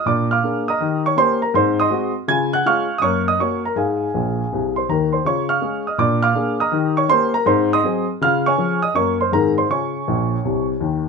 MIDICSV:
0, 0, Header, 1, 2, 480
1, 0, Start_track
1, 0, Key_signature, -5, "major"
1, 0, Tempo, 371058
1, 1025, Time_signature, 4, 2, 24, 8
1, 14341, End_track
2, 0, Start_track
2, 0, Title_t, "Grand piano"
2, 0, Program_c, 0, 0
2, 75, Note_on_c, 0, 46, 68
2, 86, Note_on_c, 0, 86, 74
2, 98, Note_on_c, 0, 74, 67
2, 101, Note_on_c, 0, 62, 40
2, 346, Note_off_c, 0, 86, 0
2, 355, Note_off_c, 0, 62, 0
2, 376, Note_off_c, 0, 74, 0
2, 402, Note_on_c, 0, 89, 81
2, 421, Note_on_c, 0, 77, 62
2, 422, Note_on_c, 0, 86, 61
2, 479, Note_off_c, 0, 46, 0
2, 563, Note_on_c, 0, 62, 46
2, 567, Note_on_c, 0, 58, 43
2, 573, Note_on_c, 0, 68, 40
2, 801, Note_off_c, 0, 89, 0
2, 822, Note_off_c, 0, 62, 0
2, 825, Note_off_c, 0, 58, 0
2, 830, Note_off_c, 0, 68, 0
2, 849, Note_off_c, 0, 77, 0
2, 850, Note_off_c, 0, 86, 0
2, 882, Note_on_c, 0, 87, 80
2, 903, Note_on_c, 0, 82, 64
2, 905, Note_on_c, 0, 75, 65
2, 1041, Note_on_c, 0, 51, 73
2, 1065, Note_on_c, 0, 67, 44
2, 1282, Note_off_c, 0, 87, 0
2, 1318, Note_off_c, 0, 67, 0
2, 1330, Note_off_c, 0, 82, 0
2, 1332, Note_off_c, 0, 75, 0
2, 1371, Note_on_c, 0, 85, 82
2, 1387, Note_on_c, 0, 73, 70
2, 1442, Note_off_c, 0, 51, 0
2, 1498, Note_off_c, 0, 85, 0
2, 1506, Note_on_c, 0, 58, 54
2, 1518, Note_off_c, 0, 73, 0
2, 1521, Note_on_c, 0, 67, 60
2, 1523, Note_on_c, 0, 61, 49
2, 1526, Note_on_c, 0, 84, 96
2, 1540, Note_on_c, 0, 72, 68
2, 1770, Note_off_c, 0, 58, 0
2, 1781, Note_off_c, 0, 67, 0
2, 1782, Note_off_c, 0, 61, 0
2, 1786, Note_off_c, 0, 84, 0
2, 1818, Note_off_c, 0, 72, 0
2, 1839, Note_on_c, 0, 82, 76
2, 1853, Note_on_c, 0, 70, 54
2, 1971, Note_off_c, 0, 82, 0
2, 1991, Note_off_c, 0, 70, 0
2, 1993, Note_on_c, 0, 44, 82
2, 2009, Note_on_c, 0, 84, 85
2, 2019, Note_on_c, 0, 60, 43
2, 2028, Note_on_c, 0, 72, 80
2, 2268, Note_off_c, 0, 84, 0
2, 2274, Note_off_c, 0, 60, 0
2, 2303, Note_off_c, 0, 72, 0
2, 2323, Note_on_c, 0, 87, 84
2, 2337, Note_on_c, 0, 84, 72
2, 2341, Note_on_c, 0, 75, 72
2, 2398, Note_off_c, 0, 44, 0
2, 2458, Note_on_c, 0, 56, 53
2, 2463, Note_on_c, 0, 60, 46
2, 2471, Note_on_c, 0, 66, 65
2, 2722, Note_off_c, 0, 87, 0
2, 2724, Note_off_c, 0, 56, 0
2, 2728, Note_off_c, 0, 60, 0
2, 2734, Note_off_c, 0, 66, 0
2, 2768, Note_off_c, 0, 84, 0
2, 2769, Note_off_c, 0, 75, 0
2, 2948, Note_on_c, 0, 49, 86
2, 2956, Note_on_c, 0, 92, 101
2, 2973, Note_on_c, 0, 65, 57
2, 2976, Note_on_c, 0, 80, 81
2, 3221, Note_off_c, 0, 92, 0
2, 3230, Note_off_c, 0, 65, 0
2, 3257, Note_off_c, 0, 80, 0
2, 3278, Note_on_c, 0, 90, 93
2, 3297, Note_on_c, 0, 78, 77
2, 3355, Note_off_c, 0, 49, 0
2, 3411, Note_off_c, 0, 90, 0
2, 3433, Note_off_c, 0, 78, 0
2, 3439, Note_on_c, 0, 56, 49
2, 3439, Note_on_c, 0, 61, 51
2, 3441, Note_on_c, 0, 65, 52
2, 3448, Note_on_c, 0, 89, 95
2, 3453, Note_on_c, 0, 85, 83
2, 3457, Note_on_c, 0, 77, 70
2, 3699, Note_off_c, 0, 56, 0
2, 3700, Note_off_c, 0, 61, 0
2, 3701, Note_off_c, 0, 65, 0
2, 3777, Note_off_c, 0, 89, 0
2, 3811, Note_off_c, 0, 85, 0
2, 3813, Note_off_c, 0, 77, 0
2, 3860, Note_on_c, 0, 87, 86
2, 3898, Note_on_c, 0, 42, 72
2, 3907, Note_on_c, 0, 85, 86
2, 3924, Note_off_c, 0, 87, 0
2, 3930, Note_on_c, 0, 73, 67
2, 3931, Note_on_c, 0, 58, 49
2, 4176, Note_off_c, 0, 85, 0
2, 4188, Note_off_c, 0, 58, 0
2, 4213, Note_off_c, 0, 73, 0
2, 4243, Note_on_c, 0, 87, 86
2, 4253, Note_on_c, 0, 75, 66
2, 4309, Note_off_c, 0, 42, 0
2, 4374, Note_off_c, 0, 87, 0
2, 4387, Note_on_c, 0, 58, 38
2, 4391, Note_off_c, 0, 75, 0
2, 4396, Note_on_c, 0, 61, 36
2, 4400, Note_on_c, 0, 66, 45
2, 4402, Note_on_c, 0, 85, 74
2, 4421, Note_on_c, 0, 73, 61
2, 4651, Note_off_c, 0, 58, 0
2, 4657, Note_off_c, 0, 61, 0
2, 4660, Note_off_c, 0, 66, 0
2, 4664, Note_off_c, 0, 85, 0
2, 4699, Note_off_c, 0, 73, 0
2, 4727, Note_on_c, 0, 82, 67
2, 4739, Note_on_c, 0, 70, 52
2, 4856, Note_off_c, 0, 82, 0
2, 4861, Note_on_c, 0, 44, 62
2, 4871, Note_on_c, 0, 80, 65
2, 4874, Note_off_c, 0, 70, 0
2, 4886, Note_on_c, 0, 77, 57
2, 4888, Note_on_c, 0, 68, 56
2, 5271, Note_off_c, 0, 44, 0
2, 5358, Note_on_c, 0, 46, 52
2, 5360, Note_on_c, 0, 34, 57
2, 5713, Note_off_c, 0, 46, 0
2, 5714, Note_off_c, 0, 34, 0
2, 5852, Note_on_c, 0, 48, 54
2, 5859, Note_on_c, 0, 36, 52
2, 5953, Note_off_c, 0, 80, 0
2, 6099, Note_off_c, 0, 77, 0
2, 6100, Note_off_c, 0, 68, 0
2, 6161, Note_on_c, 0, 84, 63
2, 6184, Note_on_c, 0, 72, 48
2, 6202, Note_off_c, 0, 48, 0
2, 6206, Note_off_c, 0, 36, 0
2, 6292, Note_off_c, 0, 84, 0
2, 6316, Note_off_c, 0, 72, 0
2, 6320, Note_on_c, 0, 51, 59
2, 6325, Note_on_c, 0, 39, 54
2, 6333, Note_on_c, 0, 82, 69
2, 6355, Note_on_c, 0, 70, 50
2, 6590, Note_off_c, 0, 82, 0
2, 6625, Note_off_c, 0, 70, 0
2, 6630, Note_on_c, 0, 84, 57
2, 6643, Note_on_c, 0, 72, 53
2, 6674, Note_off_c, 0, 51, 0
2, 6677, Note_off_c, 0, 39, 0
2, 6765, Note_off_c, 0, 84, 0
2, 6785, Note_off_c, 0, 72, 0
2, 6792, Note_on_c, 0, 49, 65
2, 6810, Note_on_c, 0, 85, 83
2, 6815, Note_on_c, 0, 65, 49
2, 6822, Note_on_c, 0, 73, 70
2, 7068, Note_off_c, 0, 85, 0
2, 7071, Note_off_c, 0, 65, 0
2, 7098, Note_off_c, 0, 73, 0
2, 7103, Note_on_c, 0, 89, 85
2, 7112, Note_on_c, 0, 77, 57
2, 7112, Note_on_c, 0, 85, 62
2, 7197, Note_off_c, 0, 49, 0
2, 7264, Note_on_c, 0, 56, 44
2, 7267, Note_on_c, 0, 61, 43
2, 7272, Note_on_c, 0, 68, 52
2, 7509, Note_off_c, 0, 89, 0
2, 7528, Note_off_c, 0, 56, 0
2, 7530, Note_off_c, 0, 61, 0
2, 7533, Note_off_c, 0, 68, 0
2, 7553, Note_off_c, 0, 77, 0
2, 7553, Note_off_c, 0, 85, 0
2, 7596, Note_on_c, 0, 87, 60
2, 7613, Note_on_c, 0, 75, 55
2, 7728, Note_off_c, 0, 87, 0
2, 7738, Note_on_c, 0, 46, 73
2, 7749, Note_on_c, 0, 86, 78
2, 7750, Note_off_c, 0, 75, 0
2, 7756, Note_on_c, 0, 74, 59
2, 7766, Note_on_c, 0, 62, 48
2, 8015, Note_off_c, 0, 86, 0
2, 8024, Note_off_c, 0, 62, 0
2, 8044, Note_off_c, 0, 74, 0
2, 8053, Note_on_c, 0, 89, 90
2, 8063, Note_on_c, 0, 77, 72
2, 8069, Note_on_c, 0, 86, 68
2, 8148, Note_off_c, 0, 46, 0
2, 8215, Note_on_c, 0, 58, 43
2, 8216, Note_on_c, 0, 62, 48
2, 8227, Note_on_c, 0, 68, 53
2, 8463, Note_off_c, 0, 89, 0
2, 8481, Note_off_c, 0, 58, 0
2, 8482, Note_off_c, 0, 62, 0
2, 8490, Note_off_c, 0, 68, 0
2, 8507, Note_off_c, 0, 77, 0
2, 8511, Note_off_c, 0, 86, 0
2, 8542, Note_on_c, 0, 87, 81
2, 8551, Note_on_c, 0, 82, 66
2, 8552, Note_on_c, 0, 75, 58
2, 8689, Note_on_c, 0, 51, 80
2, 8718, Note_on_c, 0, 67, 52
2, 8948, Note_off_c, 0, 87, 0
2, 8977, Note_off_c, 0, 67, 0
2, 8991, Note_off_c, 0, 82, 0
2, 8992, Note_off_c, 0, 75, 0
2, 9018, Note_on_c, 0, 85, 83
2, 9029, Note_on_c, 0, 73, 73
2, 9102, Note_off_c, 0, 51, 0
2, 9157, Note_off_c, 0, 85, 0
2, 9169, Note_on_c, 0, 58, 57
2, 9175, Note_on_c, 0, 67, 53
2, 9177, Note_off_c, 0, 73, 0
2, 9179, Note_on_c, 0, 61, 52
2, 9179, Note_on_c, 0, 84, 105
2, 9198, Note_on_c, 0, 72, 72
2, 9437, Note_off_c, 0, 58, 0
2, 9441, Note_off_c, 0, 67, 0
2, 9444, Note_off_c, 0, 61, 0
2, 9449, Note_off_c, 0, 84, 0
2, 9485, Note_off_c, 0, 72, 0
2, 9497, Note_on_c, 0, 82, 88
2, 9516, Note_on_c, 0, 70, 60
2, 9636, Note_off_c, 0, 82, 0
2, 9648, Note_on_c, 0, 44, 91
2, 9659, Note_on_c, 0, 84, 82
2, 9660, Note_off_c, 0, 70, 0
2, 9667, Note_on_c, 0, 72, 77
2, 9676, Note_on_c, 0, 60, 56
2, 9929, Note_off_c, 0, 84, 0
2, 9936, Note_off_c, 0, 60, 0
2, 9959, Note_off_c, 0, 72, 0
2, 10003, Note_on_c, 0, 87, 92
2, 10008, Note_on_c, 0, 84, 61
2, 10018, Note_on_c, 0, 75, 69
2, 10062, Note_off_c, 0, 44, 0
2, 10138, Note_on_c, 0, 60, 56
2, 10141, Note_on_c, 0, 54, 48
2, 10154, Note_on_c, 0, 68, 60
2, 10400, Note_off_c, 0, 87, 0
2, 10403, Note_off_c, 0, 60, 0
2, 10405, Note_off_c, 0, 54, 0
2, 10415, Note_off_c, 0, 68, 0
2, 10440, Note_off_c, 0, 84, 0
2, 10446, Note_off_c, 0, 75, 0
2, 10626, Note_on_c, 0, 49, 83
2, 10640, Note_on_c, 0, 89, 107
2, 10662, Note_on_c, 0, 65, 50
2, 10663, Note_on_c, 0, 77, 82
2, 10901, Note_off_c, 0, 89, 0
2, 10915, Note_off_c, 0, 65, 0
2, 10938, Note_off_c, 0, 77, 0
2, 10948, Note_on_c, 0, 85, 93
2, 10958, Note_on_c, 0, 80, 73
2, 10964, Note_on_c, 0, 73, 69
2, 11032, Note_off_c, 0, 49, 0
2, 11097, Note_on_c, 0, 53, 46
2, 11101, Note_on_c, 0, 61, 51
2, 11110, Note_on_c, 0, 68, 44
2, 11352, Note_off_c, 0, 85, 0
2, 11362, Note_off_c, 0, 53, 0
2, 11365, Note_off_c, 0, 61, 0
2, 11372, Note_off_c, 0, 68, 0
2, 11395, Note_off_c, 0, 80, 0
2, 11398, Note_off_c, 0, 73, 0
2, 11416, Note_on_c, 0, 87, 86
2, 11438, Note_on_c, 0, 75, 57
2, 11556, Note_off_c, 0, 87, 0
2, 11569, Note_on_c, 0, 42, 60
2, 11570, Note_on_c, 0, 54, 40
2, 11578, Note_on_c, 0, 61, 42
2, 11581, Note_off_c, 0, 75, 0
2, 11584, Note_on_c, 0, 85, 88
2, 11588, Note_on_c, 0, 58, 51
2, 11588, Note_on_c, 0, 70, 37
2, 11597, Note_on_c, 0, 73, 65
2, 11837, Note_off_c, 0, 54, 0
2, 11843, Note_off_c, 0, 61, 0
2, 11850, Note_off_c, 0, 70, 0
2, 11851, Note_off_c, 0, 58, 0
2, 11852, Note_off_c, 0, 85, 0
2, 11885, Note_off_c, 0, 73, 0
2, 11909, Note_on_c, 0, 84, 69
2, 11926, Note_on_c, 0, 72, 63
2, 11983, Note_off_c, 0, 42, 0
2, 12044, Note_off_c, 0, 84, 0
2, 12053, Note_on_c, 0, 51, 41
2, 12060, Note_on_c, 0, 44, 71
2, 12065, Note_off_c, 0, 72, 0
2, 12072, Note_on_c, 0, 56, 42
2, 12073, Note_on_c, 0, 82, 82
2, 12077, Note_on_c, 0, 68, 46
2, 12083, Note_on_c, 0, 60, 37
2, 12087, Note_on_c, 0, 70, 59
2, 12320, Note_off_c, 0, 51, 0
2, 12334, Note_off_c, 0, 56, 0
2, 12337, Note_off_c, 0, 68, 0
2, 12337, Note_off_c, 0, 82, 0
2, 12342, Note_off_c, 0, 60, 0
2, 12370, Note_off_c, 0, 70, 0
2, 12391, Note_on_c, 0, 84, 72
2, 12397, Note_on_c, 0, 72, 54
2, 12469, Note_off_c, 0, 44, 0
2, 12525, Note_off_c, 0, 84, 0
2, 12541, Note_off_c, 0, 72, 0
2, 12543, Note_on_c, 0, 49, 55
2, 12557, Note_on_c, 0, 85, 77
2, 12562, Note_on_c, 0, 65, 35
2, 12570, Note_on_c, 0, 73, 47
2, 12571, Note_on_c, 0, 80, 49
2, 12821, Note_off_c, 0, 65, 0
2, 12951, Note_off_c, 0, 49, 0
2, 13034, Note_on_c, 0, 46, 56
2, 13036, Note_on_c, 0, 34, 64
2, 13390, Note_off_c, 0, 46, 0
2, 13392, Note_off_c, 0, 34, 0
2, 13513, Note_on_c, 0, 48, 59
2, 13516, Note_on_c, 0, 36, 52
2, 13777, Note_off_c, 0, 85, 0
2, 13871, Note_off_c, 0, 48, 0
2, 13873, Note_off_c, 0, 36, 0
2, 13948, Note_off_c, 0, 73, 0
2, 13948, Note_off_c, 0, 80, 0
2, 13977, Note_on_c, 0, 39, 59
2, 13979, Note_on_c, 0, 51, 60
2, 14341, Note_off_c, 0, 39, 0
2, 14341, Note_off_c, 0, 51, 0
2, 14341, End_track
0, 0, End_of_file